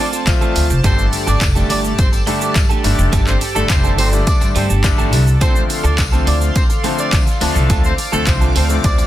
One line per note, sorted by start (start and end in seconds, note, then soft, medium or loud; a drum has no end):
0.00 0.13 A3 medium
0.00 0.12 C4 medium
0.00 0.12 F4 medium
0.00 0.80 F4 medium
0.00 0.11 A4 loud
0.00 0.80 C5 medium
0.00 0.80 D5 medium
0.00 5.37 A5 medium
0.12 0.26 A3 medium
0.12 0.26 C4 medium
0.12 0.27 F4 medium
0.12 0.27 A4 medium
0.12 tambourine soft
0.12 shaker medium
0.27 0.38 D3 loud
0.27 0.64 F3 loud
0.27 0.64 A3 loud
0.27 0.64 C4 loud
0.27 0.64 F4 loud
0.27 muted clean electric guitar stroke soft
0.27 kick loud
0.27 clap loud
0.27 closed hi-hat medium
0.27 tambourine medium
0.27 shaker medium
0.41 0.54 A3 medium
0.41 0.55 C4 medium
0.41 0.55 F4 loud
0.41 0.56 A4 loud
0.41 shaker medium
0.55 0.66 D2 medium
0.55 0.72 A3 medium
0.55 0.70 C4 medium
0.55 0.69 F4 medium
0.55 0.68 A4 medium
0.55 open hi-hat medium
0.55 tambourine medium
0.55 shaker medium
0.70 0.81 F1 loud
0.70 muted clean electric guitar stroke soft
0.70 shaker medium
0.84 1.06 G1 loud
0.84 1.31 D3 medium
0.84 1.31 G3 medium
0.84 1.06 A3 medium
0.84 1.31 A3 medium
0.84 1.05 C4 medium
0.84 0.98 D4 medium
0.84 1.31 D4 medium
0.84 5.37 G4 medium
0.84 0.98 G4 medium
0.84 9.07 A4 medium
0.84 0.97 A4 medium
0.84 1.05 C5 loud
0.84 9.07 D5 medium
0.84 kick loud
0.84 closed hi-hat medium
0.84 tambourine medium
0.84 shaker medium
0.98 muted clean electric guitar stroke soft
0.98 shaker medium
1.12 muted clean electric guitar stroke soft
1.12 open hi-hat medium
1.12 tambourine medium
1.12 shaker medium
1.27 1.38 G1 loud
1.27 1.40 A3 medium
1.27 1.48 D4 medium
1.27 1.40 D4 medium
1.27 1.41 G4 medium
1.27 1.41 A4 medium
1.27 1.48 D5 medium
1.27 tambourine soft
1.27 shaker medium
1.41 1.63 F1 loud
1.41 muted clean electric guitar stroke soft
1.41 kick loud
1.41 clap loud
1.41 closed hi-hat medium
1.41 tambourine medium
1.41 shaker medium
1.55 2.02 D3 medium
1.55 2.02 G3 medium
1.55 2.02 A3 medium
1.55 1.68 A3 soft
1.55 2.02 D4 medium
1.55 1.69 D4 medium
1.55 1.70 G4 medium
1.55 1.70 A4 medium
1.55 shaker medium
1.69 1.91 G1 medium
1.69 1.91 A3 loud
1.69 1.84 D4 loud
1.69 1.81 D4 medium
1.69 1.83 G4 loud
1.69 1.83 A4 loud
1.69 1.80 D5 medium
1.69 open hi-hat medium
1.69 tambourine medium
1.69 shaker medium
1.84 muted clean electric guitar stroke medium
1.84 tambourine soft
1.84 shaker medium
1.98 2.20 G1 loud
1.98 2.09 C4 medium
1.98 2.09 C5 medium
1.98 muted clean electric guitar stroke soft
1.98 kick loud
1.98 closed hi-hat medium
1.98 tambourine medium
1.98 shaker medium
2.12 muted clean electric guitar stroke medium
2.12 tambourine medium
2.12 shaker medium
2.26 2.64 D3 medium
2.26 2.64 G3 medium
2.26 2.42 A3 medium
2.26 2.64 A3 medium
2.26 2.64 D4 loud
2.26 2.41 D4 medium
2.26 2.40 G4 medium
2.26 2.40 A4 loud
2.26 open hi-hat medium
2.26 shaker medium
2.41 2.54 A3 medium
2.41 2.54 D4 medium
2.41 2.63 D4 medium
2.41 2.55 G4 medium
2.41 2.55 A4 medium
2.41 2.62 D5 medium
2.41 shaker medium
2.55 2.66 G2 loud
2.55 muted clean electric guitar stroke soft
2.55 kick loud
2.55 clap loud
2.55 closed hi-hat medium
2.55 tambourine medium
2.55 shaker medium
2.69 2.82 A3 medium
2.69 2.83 D4 medium
2.69 2.84 G4 medium
2.69 2.84 A4 loud
2.69 shaker medium
2.84 2.95 G1 medium
2.84 3.30 D3 medium
2.84 3.31 G3 medium
2.84 3.01 A3 medium
2.84 3.31 A3 medium
2.84 3.31 D4 loud
2.84 2.98 D4 medium
2.84 2.98 G4 medium
2.84 2.97 A4 medium
2.84 open hi-hat medium
2.84 tambourine medium
2.84 shaker medium
2.98 3.09 F1 loud
2.98 muted clean electric guitar stroke soft
2.98 shaker medium
3.12 3.34 G1 loud
3.12 3.34 A3 loud
3.12 3.27 D4 loud
3.12 3.26 G4 loud
3.12 3.26 A4 loud
3.12 kick loud
3.12 closed hi-hat medium
3.12 tambourine medium
3.12 shaker medium
3.27 3.38 C4 medium
3.27 3.37 C5 medium
3.27 muted clean electric guitar stroke soft
3.27 clap medium
3.27 shaker medium
3.41 muted clean electric guitar stroke medium
3.41 open hi-hat medium
3.41 tambourine medium
3.41 shaker medium
3.55 3.66 G1 medium
3.55 3.93 D3 medium
3.55 3.93 G3 medium
3.55 3.93 A3 medium
3.55 3.66 A3 medium
3.55 3.68 A3 medium
3.55 3.93 D4 loud
3.55 3.69 D4 medium
3.55 3.69 G4 medium
3.55 3.70 A4 medium
3.55 3.66 A4 medium
3.55 tambourine soft
3.55 shaker medium
3.69 3.98 F1 loud
3.69 3.91 C4 medium
3.69 3.91 C5 medium
3.69 muted clean electric guitar stroke soft
3.69 kick loud
3.69 clap loud
3.69 closed hi-hat medium
3.69 tambourine medium
3.69 shaker medium
3.84 3.97 A3 medium
3.84 3.97 D4 medium
3.84 3.98 G4 medium
3.84 3.99 A4 medium
3.84 shaker medium
3.98 4.20 G1 medium
3.98 4.20 A3 medium
3.98 4.09 C4 medium
3.98 4.12 D4 medium
3.98 4.12 G4 medium
3.98 4.11 A4 medium
3.98 4.09 C5 medium
3.98 open hi-hat medium
3.98 tambourine soft
3.98 shaker medium
4.12 4.59 D3 medium
4.12 4.59 G3 medium
4.12 4.59 A3 medium
4.12 4.59 D4 medium
4.12 muted clean electric guitar stroke medium
4.12 tambourine soft
4.12 shaker medium
4.27 4.48 D4 medium
4.27 4.48 D5 medium
4.27 muted clean electric guitar stroke soft
4.27 kick loud
4.27 closed hi-hat medium
4.27 tambourine medium
4.27 shaker medium
4.41 4.52 G2 loud
4.41 muted clean electric guitar stroke soft
4.41 tambourine medium
4.41 shaker medium
4.55 4.66 G2 loud
4.55 4.70 A3 medium
4.55 4.67 C4 medium
4.55 4.69 D4 medium
4.55 4.69 G4 loud
4.55 4.68 A4 medium
4.55 4.66 C5 medium
4.55 open hi-hat medium
4.55 shaker medium
4.69 4.91 G1 medium
4.69 4.83 A3 soft
4.69 4.83 D4 medium
4.69 4.84 G4 medium
4.69 4.84 A4 medium
4.69 shaker medium
4.84 5.21 D3 loud
4.84 5.21 G3 loud
4.84 5.21 A3 loud
4.84 5.21 D4 loud
4.84 muted clean electric guitar stroke soft
4.84 kick loud
4.84 clap loud
4.84 closed hi-hat medium
4.84 tambourine medium
4.84 shaker medium
4.98 5.13 G1 medium
4.98 5.11 A3 medium
4.98 5.12 D4 medium
4.98 5.12 G4 medium
4.98 5.13 A4 medium
4.98 tambourine soft
4.98 shaker medium
5.12 5.34 C2 medium
5.12 5.29 A3 medium
5.12 5.27 D4 medium
5.12 5.26 G4 medium
5.12 5.25 A4 medium
5.12 open hi-hat medium
5.12 tambourine soft
5.12 shaker medium
5.27 muted clean electric guitar stroke medium
5.27 shaker medium
5.41 5.63 D2 loud
5.41 5.88 D3 medium
5.41 5.88 F3 medium
5.41 5.63 A3 medium
5.41 5.88 A3 medium
5.41 5.55 C4 medium
5.41 5.88 C4 medium
5.41 5.63 C4 medium
5.41 5.55 F4 medium
5.41 5.54 A4 medium
5.41 5.62 C5 loud
5.41 9.07 F5 medium
5.41 7.68 C6 medium
5.41 kick loud
5.41 closed hi-hat medium
5.41 tambourine medium
5.41 shaker medium
5.55 muted clean electric guitar stroke soft
5.55 shaker medium
5.69 muted clean electric guitar stroke medium
5.69 open hi-hat medium
5.69 tambourine medium
5.69 shaker medium
5.84 5.95 D2 loud
5.84 5.97 A3 medium
5.84 5.97 C4 medium
5.84 6.05 D4 medium
5.84 5.98 F4 medium
5.84 5.98 A4 medium
5.84 6.05 D5 medium
5.84 tambourine soft
5.84 shaker medium
5.98 6.20 C2 medium
5.98 muted clean electric guitar stroke soft
5.98 kick loud
5.98 clap loud
5.98 closed hi-hat medium
5.98 tambourine medium
5.98 shaker medium
6.12 6.59 D3 medium
6.12 6.59 F3 medium
6.12 6.59 A3 medium
6.12 6.25 A3 medium
6.12 6.59 C4 medium
6.12 6.26 C4 medium
6.12 6.27 F4 medium
6.12 6.27 A4 medium
6.12 shaker medium
6.26 6.48 D2 loud
6.26 6.48 A3 loud
6.26 6.41 C4 loud
6.26 6.38 D4 medium
6.26 6.40 F4 loud
6.26 6.40 A4 medium
6.26 6.37 D5 medium
6.26 open hi-hat medium
6.26 tambourine soft
6.26 shaker medium
6.41 muted clean electric guitar stroke soft
6.41 tambourine soft
6.41 shaker medium
6.55 6.77 D2 medium
6.55 6.66 C4 medium
6.55 6.66 C5 medium
6.55 muted clean electric guitar stroke soft
6.55 kick loud
6.55 closed hi-hat medium
6.55 tambourine medium
6.55 shaker medium
6.69 muted clean electric guitar stroke soft
6.69 tambourine medium
6.69 shaker medium
6.84 7.21 D3 medium
6.84 7.21 F3 medium
6.84 6.99 A3 medium
6.84 7.21 A3 medium
6.84 6.98 C4 loud
6.84 7.21 C4 medium
6.84 6.97 F4 loud
6.84 6.97 A4 loud
6.84 open hi-hat medium
6.84 shaker medium
6.98 7.11 A3 medium
6.98 7.12 C4 medium
6.98 7.20 D4 medium
6.98 7.12 F4 medium
6.98 7.13 A4 medium
6.98 7.19 D5 medium
6.98 tambourine soft
6.98 shaker medium
7.12 7.23 D3 loud
7.12 muted clean electric guitar stroke soft
7.12 kick loud
7.12 clap loud
7.12 closed hi-hat medium
7.12 tambourine medium
7.12 shaker medium
7.27 muted clean electric guitar stroke medium
7.27 tambourine soft
7.27 shaker medium
7.41 7.52 D2 medium
7.41 7.88 D3 loud
7.41 7.88 F3 medium
7.41 7.56 A3 medium
7.41 7.88 A3 medium
7.41 7.55 C4 medium
7.41 7.88 D4 loud
7.41 7.55 F4 medium
7.41 7.54 A4 medium
7.41 open hi-hat medium
7.41 tambourine medium
7.41 shaker medium
7.55 7.66 C2 loud
7.55 7.68 A3 medium
7.55 7.69 C4 medium
7.55 7.69 F4 medium
7.55 7.70 A4 medium
7.55 shaker medium
7.69 7.91 D2 loud
7.69 7.91 A3 medium
7.69 7.84 C4 medium
7.69 7.83 F4 medium
7.69 7.83 A4 loud
7.69 9.07 D6 loud
7.69 kick loud
7.69 closed hi-hat medium
7.69 tambourine medium
7.69 shaker medium
7.84 7.95 C4 medium
7.84 7.95 C5 medium
7.84 muted clean electric guitar stroke medium
7.84 shaker medium
7.98 muted clean electric guitar stroke soft
7.98 open hi-hat medium
7.98 tambourine medium
7.98 shaker medium
8.12 8.23 D2 loud
8.12 8.50 D3 medium
8.12 8.50 F3 medium
8.12 8.50 A3 medium
8.12 8.24 A3 medium
8.12 8.25 A3 medium
8.12 8.50 C4 loud
8.12 8.26 C4 medium
8.12 8.26 F4 medium
8.12 8.27 A4 medium
8.12 8.23 A4 medium
8.12 shaker medium
8.27 8.48 C2 loud
8.27 8.48 C4 medium
8.27 8.48 C5 medium
8.27 muted clean electric guitar stroke soft
8.27 kick loud
8.27 clap loud
8.27 closed hi-hat medium
8.27 tambourine medium
8.27 shaker medium
8.41 8.54 A3 medium
8.41 8.54 C4 medium
8.41 8.55 F4 medium
8.41 8.56 A4 medium
8.41 shaker medium
8.55 8.77 D2 loud
8.55 8.77 A3 medium
8.55 8.70 C4 medium
8.55 8.67 C4 medium
8.55 8.69 F4 loud
8.55 8.68 A4 loud
8.55 8.66 C5 medium
8.55 open hi-hat medium
8.55 tambourine soft
8.55 shaker medium
8.69 9.07 D3 medium
8.69 9.07 F3 medium
8.69 9.07 A3 medium
8.69 9.07 C4 medium
8.69 muted clean electric guitar stroke soft
8.69 tambourine soft
8.69 shaker medium
8.84 9.06 D2 loud
8.84 9.05 D4 medium
8.84 9.05 D5 medium
8.84 muted clean electric guitar stroke soft
8.84 kick loud
8.84 closed hi-hat medium
8.84 tambourine medium
8.84 shaker medium
8.98 muted clean electric guitar stroke soft
8.98 tambourine medium
8.98 shaker medium